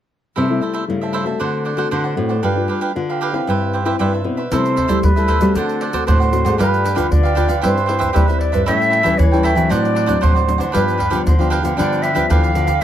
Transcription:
0.36 C3 G3 A3 E4 A4 C5 E5
0.49 G3 A3 E4
0.61 E4 A4 C5 E5
0.73 E4 A4 C5 E5
0.87 G2 C#3 G3 A3 E4
1.01 A4 C5 E5
1.13 E4 A4 C5 E5
1.24 A3 C4 F#4 A4 C5 E5
1.40 D3 D4 C5 D5 F#5
1.65 D4 C5 D5 F#5
1.77 A3 C4 D4 F#4 C5 D5 F#5
1.91 A2 D3 D4 C5 D5 F#5
2.04 C5 D5 F#5
2.16 A2 A3 C4 F#4
2.29 C5 D5 F#5
2.42 G2 G3 D4 F4 G4 B4 F5
2.56 D4 F4 B4
2.68 D4 G4 B4 F5
2.81 D4 G4 B4 F5
2.95 D3 D4 F4 B4
3.09 G4 B4 F5
3.21 D4 G4 B4 F5
3.33 C4 E4 G4 B4 F5
3.47 G2 G3 G4 B4 C5 E5
3.73 G4 B4 C5 E5
3.85 C4 E4 G4 B4 C5 E5
3.99 G2 G3 G4 B4 C5 E5
4.13 B4 C5 E5
4.24 B2 C4 E4 B4
4.37 B4 C5 E5
4.51 C3 G3 A3 E4 A4 C5 E5, pandeiro, shaker, surdo
4.66 pandeiro, shaker
4.76 E4 A4 C5 E5, pandeiro, surdo
4.88 G3 A3 E4 A4 C5 E5, pandeiro, shaker, surdo
5.03 G2 G3 B4, pandeiro, shaker, surdo
5.16 G3 A3 E4 A4 C5 E5, pandeiro, shaker
5.28 E4 A4 C5 E5, pandeiro, surdo
5.41 G3 A3 C4 F#4 A4 C5 E5, pandeiro, shaker
5.55 D3 D4 A4 C5 D5 F#5, pandeiro, shaker, surdo
5.69 pandeiro, shaker
5.81 D4 C5 D5 F#5, pandeiro
5.93 A3 C4 D4 F#4 C5 D5 F#5, pandeiro, shaker, surdo
6.07 A2 D4 C5 D5 F#5, pandeiro, shaker, surdo
6.20 C5 D5 F#5, pandeiro, shaker
6.32 A3 C4 F#4, pandeiro, shaker
6.45 G#2 C5 D5 F#5, pandeiro, shaker, surdo
6.58 G2 G3 D4 F4 G4 B4 F5, pandeiro, shaker, surdo
6.74 pandeiro, shaker
6.84 D4 G4 B4 F5, pandeiro, shaker
6.95 D3 D4 F4 G4 B4 F5, pandeiro, shaker, surdo
7.11 D3 D5, pandeiro, shaker, surdo
7.23 G4 B4 F5, pandeiro, shaker
7.35 D4 F4 G4 B4 F5, pandeiro, shaker, surdo
7.48 D3 G4 B4 F5, pandeiro, shaker
7.62 G2 G3 C4 E4 G4 B4 C5 E5, pandeiro, shaker, surdo
7.77 pandeiro, shaker
7.86 C4 E4 G4 B4 C5 E5, pandeiro
7.99 G4 B4 C5 E5, pandeiro, shaker, surdo
8.13 G3 C4 E4 G4 B4 C5 E5, pandeiro, shaker, surdo
8.28 C4 E4 B4 C5 E5, pandeiro, shaker
8.38 D5, pandeiro
8.52 G2 B4 C5 E5, pandeiro, shaker, surdo
8.66 A2 G3 C#4 E4 A4 C#5 E5 G5, pandeiro, shaker, surdo
8.82 pandeiro, shaker
8.90 E4 A4 C#5 G5, pandeiro
9.03 E3 G3 C#4 E4 A4 C#5 G5, pandeiro, shaker, surdo
9.17 E3 C#5, pandeiro, shaker, surdo
9.32 G3 C#4 E4 A4 C#5 G5, pandeiro, shaker
9.43 E4 A4 C#5 E5 G5, pandeiro, surdo
9.55 E3 F#3 C4 D4 A4 C#5 G5, pandeiro, shaker
9.69 A2 D4 C5 D5 F#5, pandeiro, shaker, surdo
9.85 pandeiro, shaker
9.95 D4 C5 D5 F#5, pandeiro
10.06 F#3 C4 D4 C5 D5 F#5, pandeiro, shaker, surdo
10.21 A2 D4 C5 D5 F#5, pandeiro, shaker, surdo
10.35 C5 D5 F#5, pandeiro, shaker
10.47 F#3 C4 D4, pandeiro, shaker
10.58 D3 C5 D5 F#5, pandeiro, shaker, surdo
10.72 G2 F3 B3 D4 G4 B4 F5, pandeiro, shaker, surdo
10.88 pandeiro, shaker
10.98 D4 G4 B4 F5, pandeiro, surdo
11.10 D3 F3 B3 D4 G4 B4 F5, pandeiro, shaker, surdo
11.25 D3 C5, pandeiro, shaker, surdo
11.39 F3 B3 D4 G4 B4 F5, pandeiro, shaker
11.50 D4 G4 B4 F5, pandeiro, surdo
11.63 D3 F3 B3 D4 G4 B4 F5, pandeiro, shaker
11.76 G2 D3 F3 B3 D4 G4 B4 D5 F5, pandeiro, shaker, surdo
11.93 pandeiro, shaker
12.02 D4 G4 B4 E5 F5, pandeiro, shaker
12.15 F3 B3 D4 G4 B4 F5, pandeiro, shaker, surdo
12.29 D3 E3 D4 G4 B4 F5, pandeiro, shaker, surdo
12.43 G4 B4 F5, pandeiro, shaker
12.55 D3 F3 B3 D4, pandeiro, shaker
12.67 G4 B4 F5, pandeiro, shaker, surdo
12.81 E5

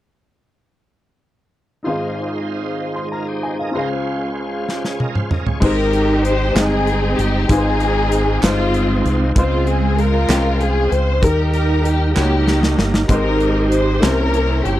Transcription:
1.83 G#1 G#2 G#3 D#4 F4 G#4 C5
1.88 C5 F5
2.96 C6
3.12 F4 A#4 A#5
3.28 G4 C5
3.43 G#5
3.59 A#4 D#5 F5
3.72 C#2 C#3 G#3 C#4 F4 G#4 C5
3.76 C#4 F4 C5 F5
4.69 G4 C5, snare
4.85 G#4 C#5, snare
5.00 A#4 D#5, high tom
5.15 C5 F5, mid tom
5.31 A#4 D#5, mid tom
5.46 G#4 C#5, floor tom
5.60 G#1 G#2 G#3 C4 D#4 G4 A#4 B4 C5 G5, kick, crash
5.64 D#4 G4
5.69 C5
5.93 closed hi-hat
6.25 C5, closed hi-hat
6.55 G1 G#3 C4 D#4 G#4 D#5 G5, snare, clap, closed hi-hat
6.87 closed hi-hat
7.18 G1 G4, closed hi-hat
7.48 G#1 G#2 G#3 C4 D#4 F4 G#4 B4 C5, kick, closed hi-hat
7.58 C5
7.80 closed hi-hat
8.12 closed hi-hat
8.41 G1 G3 C4 D#4 F4 C5, snare, clap, closed hi-hat
8.46 G#3 C4
8.74 closed hi-hat
9.05 C2, closed hi-hat
9.35 C#2 C#3 G#3 C4 F4 C5, kick, closed hi-hat
9.39 G#3 C4
9.67 G#4, closed hi-hat
9.99 F4 A#4, closed hi-hat
10.28 C2 G#3 C4 C#4 F4 G5, snare, clap, closed hi-hat
10.60 G#4, closed hi-hat
10.91 C#2 C5, closed hi-hat
11.21 D#2 D#3 G3 A#3 D#4 G4 A4 A#4, kick, closed hi-hat
11.30 A#4
11.53 A#4, closed hi-hat
11.84 G4, closed hi-hat
12.14 C#2 A#3 D#4 F#4 G4 C#5, snare, clap
12.22 G4
12.48 snare
12.63 snare
12.78 G1, snare
12.94 snare
13.08 G#1 G#2 G#3 C4 D#4 G4 A#4 C5, kick, closed hi-hat
13.40 closed hi-hat
13.72 C5, closed hi-hat
14.00 C2 C3 A#3 C#4 D#4 E4 G4 A#4 C5, snare, clap, closed hi-hat
14.05 C#4 E4
14.10 E4
14.34 closed hi-hat
14.65 G1 G4, closed hi-hat

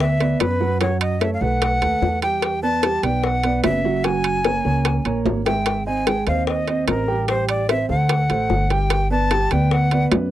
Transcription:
Already playing: D2 B3 B4 D5
0.00 E5, high bongo
0.20 B3 B4 D5, high bongo, high timbale
0.40 F#2 B4, high bongo, low bongo, high timbale
0.60 F#3 F#4 F#5, high bongo
0.81 F#3 F#4 C#5 F#5, high bongo, high timbale
1.01 D#5, high timbale
1.20 A3 A4 C#5 E5, high bongo, high timbale
1.34 F5
1.41 B1 A3 A4 B4 F#5, high bongo
1.62 high bongo, high timbale
1.81 D#2 A3 A4 B4, high bongo, high timbale
2.01 E2, high bongo, low bongo
2.22 G3 G4 G5, high bongo, high timbale
2.42 high bongo, high timbale
2.63 B3 B4 D5 A5
2.83 G3 G4 G5, high bongo, high timbale
3.03 B1 B3 B4 D5 G5, high bongo, high timbale
3.24 F#5, high bongo
3.44 B3 B4 D5, high bongo, high timbale
3.64 F#1 E5, high bongo, low bongo, high timbale, low timbale
3.84 F#3 F#4 F#5, high bongo
4.04 F#3 F#4 F#5 G#5, high bongo, high timbale
4.24 high timbale
4.45 A#3 A#4 C#5, high bongo, high timbale
4.65 C#2 A#3 A#4 C#5, high bongo
4.85 high bongo, high timbale
5.05 A#1 A#3 A#4 C#5, high bongo, high timbale
5.25 G#1, high bongo, low bongo, low timbale
5.45 G#3 G#4 E5 G5, high bongo, high timbale
5.66 high bongo, high timbale
5.86 C4 C5 D#5 G#5
6.06 G#3 G#4 G5 G#5, high bongo, high timbale
6.27 D#2 C4 C5 D#5 F5, high bongo, high timbale
6.47 D#5, high bongo
6.67 C4 C5 D#5, high bongo, high timbale
6.87 A1 A#4, high bongo, low bongo, high timbale
7.08 G3 G4 G5, high bongo
7.28 G3 G4 C5 G5, high bongo, high timbale
7.49 D5, high timbale
7.68 C4 C5 E5, high bongo, high timbale
7.89 D2 A3 A4 C5 F#5, high bongo
8.09 high bongo, high timbale
8.30 A1 A3 A4 C5, high bongo, high timbale
8.50 G1, high bongo, low bongo
8.70 G3 G4 G5, high bongo, high timbale
8.90 high bongo, high timbale
9.11 B3 B4 D5 A5
9.31 G3 G4 G5, high bongo, high timbale
9.51 D2 B3 B4 D5 G5, high bongo, high timbale
9.71 F#5, high bongo
9.91 B3 B4 D5, high bongo, high timbale
10.11 F#2, high bongo, low bongo, high timbale, low timbale

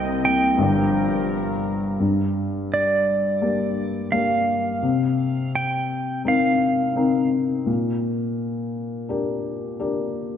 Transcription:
Already playing: C2 C3 A#3 D#5 G5
0.25 G5
0.58 G1 G2 F3 A#4
2.00 G2
2.74 D5
3.41 A#3 D4 G4
4.12 A#3 D4 G4 F5
4.83 C3
5.55 G5
6.25 C4 D#4 A#4 F5
6.96 C4 D#4 A#4
7.66 A#2
9.09 D4 G4 A#4
9.79 D4 G4 A#4

